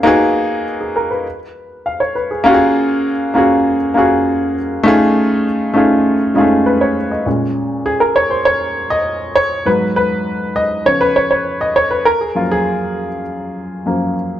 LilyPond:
\new Staff \with { instrumentName = "Grand piano" } { \time 4/4 \key ges \lydian \tempo 4 = 100 << { r4 r16 aes'16 bes'16 ces''8 r8. f''16 des''16 ces''16 aes'16~ | aes'16 r2. r8. | r2. ces''16 cis''8 ees''16~ | ees''16 r8. aes'16 bes'16 des''16 c''16 des''8. ees''8. des''8 |
ces''8 ces''4 ees''8 des''16 ces''16 des''16 des''8 ees''16 des''16 ces''16 | bes'16 aes'16 f'16 aes'4 r2 r16 | } \\ { <bes ces' ees' ges' aes'>4 r2. | <bes des' f' ges' g' aes'>4 r8 <bes des' f' ges' aes'>8 r8 <bes des' f' ges' aes'>4 r8 | <a cis' ees' f' gis'>4 r8 <a cis' ees' f' gis'>8 r8 <gis a cis' ees' f' gis'>4 r8 | <bes, aes des'>4. r2 r8 |
<aes, ges ces'>4. r8 <des f ces'>4. r8 | r8 <ges, f bes>4. r4 <ges, f bes>8 r8 | } >> }